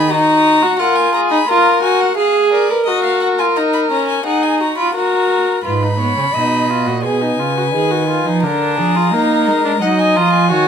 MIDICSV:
0, 0, Header, 1, 5, 480
1, 0, Start_track
1, 0, Key_signature, 5, "minor"
1, 0, Tempo, 692841
1, 75, Time_signature, 4, 2, 24, 8
1, 7398, End_track
2, 0, Start_track
2, 0, Title_t, "Violin"
2, 0, Program_c, 0, 40
2, 0, Note_on_c, 0, 83, 89
2, 71, Note_on_c, 0, 82, 88
2, 82, Note_off_c, 0, 83, 0
2, 542, Note_off_c, 0, 82, 0
2, 546, Note_on_c, 0, 78, 69
2, 660, Note_on_c, 0, 80, 69
2, 670, Note_off_c, 0, 78, 0
2, 782, Note_off_c, 0, 80, 0
2, 786, Note_on_c, 0, 82, 72
2, 834, Note_off_c, 0, 82, 0
2, 907, Note_on_c, 0, 83, 72
2, 1030, Note_on_c, 0, 82, 79
2, 1040, Note_off_c, 0, 83, 0
2, 1260, Note_off_c, 0, 82, 0
2, 1264, Note_on_c, 0, 80, 70
2, 1389, Note_on_c, 0, 78, 72
2, 1399, Note_off_c, 0, 80, 0
2, 1498, Note_off_c, 0, 78, 0
2, 1503, Note_on_c, 0, 77, 66
2, 1739, Note_off_c, 0, 77, 0
2, 1746, Note_on_c, 0, 74, 71
2, 1977, Note_off_c, 0, 74, 0
2, 1981, Note_on_c, 0, 75, 77
2, 2101, Note_off_c, 0, 75, 0
2, 2108, Note_on_c, 0, 77, 65
2, 2220, Note_off_c, 0, 77, 0
2, 2224, Note_on_c, 0, 78, 58
2, 2272, Note_off_c, 0, 78, 0
2, 2345, Note_on_c, 0, 80, 61
2, 2393, Note_off_c, 0, 80, 0
2, 2468, Note_on_c, 0, 82, 63
2, 2516, Note_off_c, 0, 82, 0
2, 2586, Note_on_c, 0, 83, 68
2, 2635, Note_off_c, 0, 83, 0
2, 2707, Note_on_c, 0, 82, 69
2, 2824, Note_off_c, 0, 82, 0
2, 2828, Note_on_c, 0, 80, 65
2, 2946, Note_off_c, 0, 80, 0
2, 2949, Note_on_c, 0, 78, 71
2, 3068, Note_on_c, 0, 80, 65
2, 3078, Note_off_c, 0, 78, 0
2, 3183, Note_off_c, 0, 80, 0
2, 3187, Note_on_c, 0, 82, 61
2, 3306, Note_off_c, 0, 82, 0
2, 3309, Note_on_c, 0, 83, 60
2, 3427, Note_off_c, 0, 83, 0
2, 3431, Note_on_c, 0, 82, 66
2, 3905, Note_off_c, 0, 82, 0
2, 3914, Note_on_c, 0, 83, 70
2, 4853, Note_off_c, 0, 83, 0
2, 4878, Note_on_c, 0, 80, 69
2, 5824, Note_off_c, 0, 80, 0
2, 5838, Note_on_c, 0, 82, 74
2, 6799, Note_on_c, 0, 78, 70
2, 6810, Note_off_c, 0, 82, 0
2, 6920, Note_on_c, 0, 80, 69
2, 6931, Note_off_c, 0, 78, 0
2, 7043, Note_on_c, 0, 82, 71
2, 7053, Note_off_c, 0, 80, 0
2, 7156, Note_off_c, 0, 82, 0
2, 7160, Note_on_c, 0, 80, 71
2, 7398, Note_off_c, 0, 80, 0
2, 7398, End_track
3, 0, Start_track
3, 0, Title_t, "Violin"
3, 0, Program_c, 1, 40
3, 0, Note_on_c, 1, 68, 75
3, 79, Note_on_c, 1, 66, 78
3, 89, Note_off_c, 1, 68, 0
3, 547, Note_off_c, 1, 66, 0
3, 551, Note_on_c, 1, 70, 73
3, 784, Note_off_c, 1, 70, 0
3, 792, Note_on_c, 1, 68, 76
3, 1024, Note_off_c, 1, 68, 0
3, 1030, Note_on_c, 1, 70, 76
3, 1497, Note_off_c, 1, 70, 0
3, 1508, Note_on_c, 1, 68, 70
3, 1742, Note_off_c, 1, 68, 0
3, 1749, Note_on_c, 1, 70, 63
3, 1865, Note_off_c, 1, 70, 0
3, 1870, Note_on_c, 1, 71, 67
3, 1917, Note_off_c, 1, 71, 0
3, 1986, Note_on_c, 1, 70, 80
3, 2930, Note_off_c, 1, 70, 0
3, 2946, Note_on_c, 1, 68, 63
3, 3190, Note_on_c, 1, 66, 56
3, 3201, Note_off_c, 1, 68, 0
3, 3421, Note_off_c, 1, 66, 0
3, 3425, Note_on_c, 1, 70, 62
3, 3902, Note_off_c, 1, 70, 0
3, 3911, Note_on_c, 1, 71, 58
3, 4139, Note_off_c, 1, 71, 0
3, 4153, Note_on_c, 1, 73, 57
3, 4397, Note_on_c, 1, 75, 55
3, 4407, Note_off_c, 1, 73, 0
3, 4875, Note_on_c, 1, 71, 60
3, 4886, Note_off_c, 1, 75, 0
3, 5839, Note_on_c, 1, 70, 63
3, 5850, Note_off_c, 1, 71, 0
3, 6078, Note_off_c, 1, 70, 0
3, 6082, Note_on_c, 1, 68, 59
3, 6320, Note_on_c, 1, 70, 63
3, 6330, Note_off_c, 1, 68, 0
3, 6796, Note_off_c, 1, 70, 0
3, 6800, Note_on_c, 1, 75, 69
3, 7269, Note_off_c, 1, 75, 0
3, 7277, Note_on_c, 1, 73, 67
3, 7398, Note_off_c, 1, 73, 0
3, 7398, End_track
4, 0, Start_track
4, 0, Title_t, "Viola"
4, 0, Program_c, 2, 41
4, 72, Note_on_c, 2, 63, 89
4, 432, Note_on_c, 2, 66, 81
4, 442, Note_off_c, 2, 63, 0
4, 550, Note_on_c, 2, 65, 86
4, 560, Note_off_c, 2, 66, 0
4, 904, Note_off_c, 2, 65, 0
4, 908, Note_on_c, 2, 63, 83
4, 956, Note_off_c, 2, 63, 0
4, 1023, Note_on_c, 2, 65, 88
4, 1259, Note_off_c, 2, 65, 0
4, 1266, Note_on_c, 2, 66, 86
4, 1500, Note_off_c, 2, 66, 0
4, 1507, Note_on_c, 2, 68, 90
4, 1870, Note_on_c, 2, 70, 76
4, 1880, Note_off_c, 2, 68, 0
4, 1989, Note_on_c, 2, 66, 82
4, 2000, Note_off_c, 2, 70, 0
4, 2351, Note_on_c, 2, 65, 76
4, 2361, Note_off_c, 2, 66, 0
4, 2470, Note_on_c, 2, 63, 81
4, 2480, Note_off_c, 2, 65, 0
4, 2705, Note_off_c, 2, 63, 0
4, 2709, Note_on_c, 2, 61, 76
4, 2944, Note_off_c, 2, 61, 0
4, 2948, Note_on_c, 2, 63, 75
4, 3301, Note_off_c, 2, 63, 0
4, 3310, Note_on_c, 2, 65, 69
4, 3423, Note_off_c, 2, 65, 0
4, 3427, Note_on_c, 2, 66, 87
4, 3903, Note_off_c, 2, 66, 0
4, 3915, Note_on_c, 2, 65, 59
4, 4037, Note_on_c, 2, 63, 48
4, 4047, Note_off_c, 2, 65, 0
4, 4154, Note_off_c, 2, 63, 0
4, 4158, Note_on_c, 2, 59, 56
4, 4271, Note_off_c, 2, 59, 0
4, 4275, Note_on_c, 2, 61, 47
4, 4324, Note_off_c, 2, 61, 0
4, 4399, Note_on_c, 2, 63, 58
4, 4639, Note_on_c, 2, 65, 56
4, 4650, Note_off_c, 2, 63, 0
4, 4760, Note_on_c, 2, 66, 52
4, 4771, Note_off_c, 2, 65, 0
4, 4875, Note_off_c, 2, 66, 0
4, 4879, Note_on_c, 2, 68, 58
4, 5000, Note_on_c, 2, 63, 53
4, 5011, Note_off_c, 2, 68, 0
4, 5124, Note_on_c, 2, 65, 56
4, 5134, Note_off_c, 2, 63, 0
4, 5239, Note_off_c, 2, 65, 0
4, 5243, Note_on_c, 2, 66, 48
4, 5291, Note_off_c, 2, 66, 0
4, 5362, Note_on_c, 2, 68, 56
4, 5479, Note_on_c, 2, 66, 52
4, 5490, Note_off_c, 2, 68, 0
4, 5597, Note_off_c, 2, 66, 0
4, 5601, Note_on_c, 2, 65, 57
4, 5723, Note_on_c, 2, 63, 58
4, 5734, Note_off_c, 2, 65, 0
4, 5843, Note_on_c, 2, 62, 72
4, 5854, Note_off_c, 2, 63, 0
4, 6207, Note_on_c, 2, 65, 64
4, 6217, Note_off_c, 2, 62, 0
4, 6320, Note_off_c, 2, 65, 0
4, 6324, Note_on_c, 2, 63, 76
4, 6676, Note_off_c, 2, 63, 0
4, 6684, Note_on_c, 2, 62, 71
4, 6732, Note_off_c, 2, 62, 0
4, 6800, Note_on_c, 2, 63, 75
4, 7039, Note_on_c, 2, 65, 84
4, 7049, Note_off_c, 2, 63, 0
4, 7272, Note_off_c, 2, 65, 0
4, 7277, Note_on_c, 2, 66, 84
4, 7398, Note_off_c, 2, 66, 0
4, 7398, End_track
5, 0, Start_track
5, 0, Title_t, "Cello"
5, 0, Program_c, 3, 42
5, 0, Note_on_c, 3, 51, 72
5, 73, Note_off_c, 3, 51, 0
5, 3911, Note_on_c, 3, 44, 62
5, 4252, Note_off_c, 3, 44, 0
5, 4274, Note_on_c, 3, 49, 56
5, 4324, Note_off_c, 3, 49, 0
5, 4397, Note_on_c, 3, 47, 56
5, 4757, Note_on_c, 3, 46, 61
5, 4768, Note_off_c, 3, 47, 0
5, 4878, Note_on_c, 3, 47, 57
5, 4888, Note_off_c, 3, 46, 0
5, 5110, Note_off_c, 3, 47, 0
5, 5115, Note_on_c, 3, 49, 59
5, 5356, Note_on_c, 3, 51, 61
5, 5367, Note_off_c, 3, 49, 0
5, 5714, Note_off_c, 3, 51, 0
5, 5718, Note_on_c, 3, 53, 66
5, 5841, Note_on_c, 3, 50, 61
5, 5851, Note_off_c, 3, 53, 0
5, 6084, Note_on_c, 3, 53, 61
5, 6094, Note_off_c, 3, 50, 0
5, 6322, Note_on_c, 3, 58, 65
5, 6332, Note_off_c, 3, 53, 0
5, 6561, Note_on_c, 3, 56, 61
5, 6572, Note_off_c, 3, 58, 0
5, 6796, Note_off_c, 3, 56, 0
5, 6800, Note_on_c, 3, 54, 71
5, 7039, Note_on_c, 3, 53, 67
5, 7049, Note_off_c, 3, 54, 0
5, 7277, Note_on_c, 3, 51, 69
5, 7287, Note_off_c, 3, 53, 0
5, 7398, Note_off_c, 3, 51, 0
5, 7398, End_track
0, 0, End_of_file